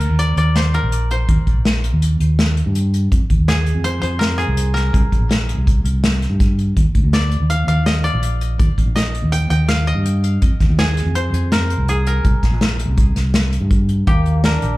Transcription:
Already playing: A#4
0.01 closed hi-hat
0.10 D#2
0.19 D5, closed hi-hat
0.36 D#2 D5, closed hi-hat
0.56 C5, snare, closed hi-hat
0.74 A#4, closed hi-hat
0.83 A#1
0.92 closed hi-hat
1.11 C5, closed hi-hat
1.29 D#2, kick, closed hi-hat
1.47 A#1, kick, closed hi-hat
1.57 A#1
1.65 snare, closed hi-hat
1.84 closed hi-hat
1.93 D#2
2.02 closed hi-hat
2.20 D#2, closed hi-hat
2.39 snare, closed hi-hat
2.57 closed hi-hat
2.66 G2
2.75 closed hi-hat
2.94 closed hi-hat
3.12 F2, kick, closed hi-hat
3.30 D#2, kick, closed hi-hat
3.39 D#2
3.48 G#4, snare, closed hi-hat
3.66 closed hi-hat
3.75 F2
3.84 C5, closed hi-hat
4.02 F2 C5, closed hi-hat
4.19 A#4, snare, closed hi-hat
4.38 G#4, closed hi-hat
4.48 C2
4.57 closed hi-hat
4.74 A#4, snare, closed hi-hat
4.94 C2, kick, closed hi-hat
5.12 A#1, kick, closed hi-hat
5.21 A#1
5.31 snare, closed hi-hat
5.49 closed hi-hat
5.57 C2
5.67 kick, closed hi-hat
5.84 C2, closed hi-hat
6.04 snare, closed hi-hat
6.22 snare, closed hi-hat
6.30 G2
6.40 kick, snare, closed hi-hat
6.59 closed hi-hat
6.77 D#2, kick, closed hi-hat
6.95 D2, kick, closed hi-hat
7.04 D2
7.13 D5, snare, closed hi-hat
7.31 closed hi-hat
7.40 D#2
7.50 F5, closed hi-hat
7.67 D#2 F5, closed hi-hat
7.86 D#5, snare, closed hi-hat
8.04 D5, closed hi-hat
8.14 A#1
8.23 closed hi-hat
8.41 closed hi-hat
8.59 D#2, kick, closed hi-hat
8.78 A#1, kick, closed hi-hat
8.86 A#1
8.96 D#5, snare, closed hi-hat
9.15 closed hi-hat
9.23 D#2
9.32 G5, closed hi-hat
9.50 D#2 G5, closed hi-hat
9.68 F5, snare, closed hi-hat
9.87 D#5, closed hi-hat
9.95 G2
10.06 closed hi-hat
10.24 closed hi-hat
10.42 F2, kick, closed hi-hat
10.60 D#2, kick, snare, closed hi-hat
10.69 D#2
10.79 G#4, snare, closed hi-hat
10.97 snare, closed hi-hat
11.05 F2
11.15 C5, closed hi-hat
11.33 F2, closed hi-hat
11.52 A#4, snare, closed hi-hat
11.70 closed hi-hat
11.78 C2
11.88 G#4, closed hi-hat
12.06 A#4, closed hi-hat
12.25 C2, kick, closed hi-hat
12.43 A#1, kick, snare, closed hi-hat
12.52 A#1
12.61 snare, closed hi-hat
12.79 closed hi-hat
12.88 C2
12.98 kick, closed hi-hat
13.16 C2, snare, closed hi-hat
13.34 snare, closed hi-hat
13.53 closed hi-hat
13.61 G2
13.71 kick, closed hi-hat
13.89 closed hi-hat
14.07 D#2 A#3 G4, kick, closed hi-hat
14.26 closed hi-hat
14.44 D4 A#4, snare, closed hi-hat
14.62 A#1, closed hi-hat

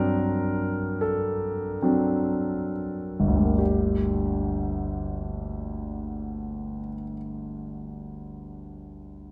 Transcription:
Already playing: G2 F#3 C4 D4 A#4
1.01 A4
1.82 F#3 C4 D4
3.20 G1
3.28 D2
3.36 G3
3.44 A#3
3.53 D4
3.59 G4

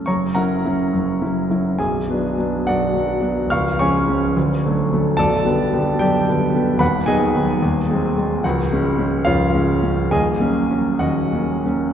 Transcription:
0.06 F#1 F#2 C#5 A#5 C#6
0.35 F#3 C#4 E4 A#4 F#5 A#5
0.65 F#3 C#4 E4
0.93 F#1 F#2
1.22 F#3 C#4 E4
1.50 F#3 C#4 E4
1.79 B0 B1 G#4 G#5
2.10 F#3 B3 D4
2.38 F#3 B3 D4
2.67 B0 B1 F#4 D5 F#5
2.94 F#3 B3 D4
3.21 F#3 B3 D4
3.46 C#1
3.50 C#2 F5 C#6 F6
3.79 F3 G#3 C#4 C#5 G#5 C#6
4.07 F3 G#3 C#4
4.36 D1 D2
4.66 D3 F#3 A3
4.93 D3 F#3 A3
5.17 B0 B1 A4 D5 A5
5.45 D3 G3 B3
5.73 D3 G3 B3
5.99 B0 B1 G4 D5 G5
6.29 D3 G3 B3
6.54 D3 G3 B3
6.77 D#1 D#2 B4 B5
6.81 F#5
7.06 D#3 F#3 B3 G#4 D#5 G#5
7.35 D#3 F#3 B3
7.62 D#1 D#2
7.90 F#3 G#3 C4
8.17 F#3 G#3 C4
8.41 C#1 F#5
8.45 C#2 F#4
8.73 G#3 C#4
8.98 G#3 C#4
9.25 C#1 C#2 F4 C#5 F5
9.54 G#3 C#4
9.83 G#3 C#4
10.11 D#1 D#2 G#4 D#5 G#5
10.40 F#3 A#3 C#4
10.70 F#3 A#3 C#4
10.99 D#1 D#2 F#4 D#5 F#5
11.33 F#3 A#3 C#4
11.65 F#3 A#3 C#4

